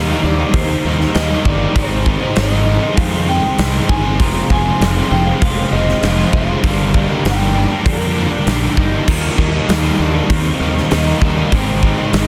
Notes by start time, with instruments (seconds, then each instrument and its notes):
Already playing: fingered electric bass D#2, overdriven electric guitar D#3 G3 A#3 D#4, ambient pad D#4 G4 C5 A#5, clean electric guitar D#5
0.08 overdriven electric guitar G3 A#3 D#4
0.23 fingered electric bass D#2, overdriven electric guitar D#3 G3 A#3 D#4, clean electric guitar D5, muted overdriven electric guitar stroke
0.39 overdriven electric guitar G3 A#3 D#4, muted overdriven electric guitar stroke
0.53 fingered electric bass D#2, overdriven electric guitar D#3 G3 A#3 D#4, clean electric guitar C5, kick, open hi-hat
0.69 overdriven electric guitar G3 A#3 D#4
0.84 fingered electric bass D#2, overdriven electric guitar D#3 G3 A#3 D#4
1.00 muted overdriven electric guitar stroke, snare
1.14 fingered electric bass D#2, overdriven electric guitar D#3 G3 A#3 D#4, clean electric guitar D#5, snare, open hi-hat
1.29 overdriven electric guitar G3 A#3 D#4
1.45 fingered electric bass G1, overdriven electric guitar D#3 G3 A#3 D#4, clean electric guitar D5, kick
1.59 overdriven electric guitar G3 A#3 D#4
1.74 fingered electric bass G#1, overdriven electric guitar G#2 D#3 G#3 C4 D#4, clean electric guitar C5, ambient pad C5 C6, kick, open hi-hat
1.78 ambient pad G#4
2.05 overdriven electric guitar D#3 G#3 C4 D#4, kick
2.23 overdriven electric guitar G#3 C4 D#4
2.35 fingered electric bass G#1, overdriven electric guitar G#2 D#3 G#3 C4 D#4, clean electric guitar D#5, snare, open hi-hat
2.51 overdriven electric guitar G#3 C4 D#4
2.66 overdriven electric guitar G#2 D#3 G#3 C4 D#4, muted overdriven electric guitar stroke
2.82 overdriven electric guitar G#3 C4 D#4, muted overdriven electric guitar stroke
2.97 fingered electric bass F2, overdriven electric guitar D#3 G#3 C4 D#4, clean electric guitar F5, kick, open hi-hat
3.12 overdriven electric guitar G#3 C4 D#4
3.27 overdriven electric guitar D#3 G#3 C4 D#4, clean electric guitar G5
3.44 muted overdriven electric guitar stroke
3.58 fingered electric bass C2, overdriven electric guitar G#2 D#3 G#3 C4 D#4, snare, open hi-hat
3.73 overdriven electric guitar G#3 C4 D#4
3.89 fingered electric bass G1, overdriven electric guitar D#3 G#3 C4 D#4, clean electric guitar G#5, kick
4.04 overdriven electric guitar G#3 C4 D#4
4.19 fingered electric bass F1, overdriven electric guitar F2 C3 F3 G#3 C4 F4, ambient pad C5 F5, clean electric guitar A#5, kick, open hi-hat
4.50 fingered electric bass F1, overdriven electric guitar F3 G#3 C4 F4, clean electric guitar G#5, kick
4.66 overdriven electric guitar F3 G#3 C4
4.80 fingered electric bass F1, overdriven electric guitar F2 C3 F3 G#3 C4 F4, snare, open hi-hat
4.95 overdriven electric guitar F3 G#3 C4 F4
5.11 fingered electric bass F1, overdriven electric guitar C3 F3 G#3 C4 F4, clean electric guitar G5, muted overdriven electric guitar stroke
5.26 overdriven electric guitar G#3 C4 F4, muted overdriven electric guitar stroke
5.41 fingered electric bass F1, overdriven electric guitar F3 G#3 C4 F4, clean electric guitar F5, kick, open hi-hat
5.56 overdriven electric guitar G#3 C4 F4
5.72 fingered electric bass F1, overdriven electric guitar C3 F3 G#3 C4 F4, clean electric guitar D#5
5.88 muted overdriven electric guitar stroke, snare
6.02 fingered electric bass F1, overdriven electric guitar F2 C3 F3 G#3 C4 F4, snare, open hi-hat
6.18 overdriven electric guitar G#3 C4 F4
6.33 fingered electric bass F1, overdriven electric guitar C3 F3 G#3 C4, clean electric guitar F5, kick
6.48 overdriven electric guitar F3 G#3 C4 F4
6.63 fingered electric bass G1, overdriven electric guitar G2 D3 G3 A#3 D4, ambient pad G4 A#4 D5 A#5, kick, open hi-hat
6.94 overdriven electric guitar D3 G3 A#3 D4, kick
7.00 clean electric guitar D#5
7.10 overdriven electric guitar G3 A#3 D4
7.25 fingered electric bass G1, overdriven electric guitar G2 D3 G3 A#3 D4, clean electric guitar G5, snare, open hi-hat
7.40 overdriven electric guitar G3 A#3 D4
7.55 overdriven electric guitar G2 D3 G3 A#3 D4, muted overdriven electric guitar stroke
7.70 overdriven electric guitar G3 A#3 D4, muted overdriven electric guitar stroke
7.85 fingered electric bass F2, overdriven electric guitar D3 G3 A#3 D4, clean electric guitar A#4, kick, open hi-hat
8.00 overdriven electric guitar G3 A#3 D4
8.15 overdriven electric guitar D3 G3 A#3 D4, clean electric guitar D4
8.32 muted overdriven electric guitar stroke
8.46 fingered electric bass A#1, overdriven electric guitar G2 D3 G3 A#3 D4, snare, open hi-hat
8.61 overdriven electric guitar G3 A#3 D4
8.77 fingered electric bass G1, overdriven electric guitar D3 G3 A#3 D4, clean electric guitar D#4, kick
8.92 overdriven electric guitar G3 A#3 D4
9.06 fingered electric bass D#2, overdriven electric guitar D#3 G3 A#3 D#4, clean electric guitar F4, kick, crash
9.37 fingered electric bass D#2, overdriven electric guitar D#3 G3 A#3 D#4, clean electric guitar D#4, kick
9.54 overdriven electric guitar G3 A#3 D#4
9.68 fingered electric bass D#2, overdriven electric guitar D#3 G3 A#3 D#4, snare, open hi-hat
9.83 overdriven electric guitar G3 A#3 D#4
9.99 fingered electric bass D#2, overdriven electric guitar D#3 G3 A#3 D#4, clean electric guitar D4, muted overdriven electric guitar stroke
10.14 overdriven electric guitar G3 A#3 D#4, muted overdriven electric guitar stroke
10.29 fingered electric bass D#2, overdriven electric guitar D#3 G3 A#3 D#4, clean electric guitar C4, kick, open hi-hat
10.45 overdriven electric guitar G3 A#3 D#4
10.60 fingered electric bass D#2, overdriven electric guitar D#3 G3 A#3 D#4
10.75 muted overdriven electric guitar stroke, snare
10.90 fingered electric bass D#2, overdriven electric guitar D#3 G3 A#3 D#4, clean electric guitar D#4, snare, open hi-hat
11.06 overdriven electric guitar G3 A#3 D#4
11.21 fingered electric bass D#2, overdriven electric guitar D#3 G3 A#3 D#4, clean electric guitar D4, kick
11.37 overdriven electric guitar G3 A#3 D#4
11.52 fingered electric bass G#1, overdriven electric guitar G#2 D#3 G#3 C4 D#4, clean electric guitar C4, kick, open hi-hat
11.82 overdriven electric guitar D#3 G#3 C4 D#4, kick
11.98 overdriven electric guitar G#3 C4 D#4
12.13 fingered electric bass G#1, overdriven electric guitar G#2 D#3 G#3 C4 D#4, clean electric guitar D#4, snare, open hi-hat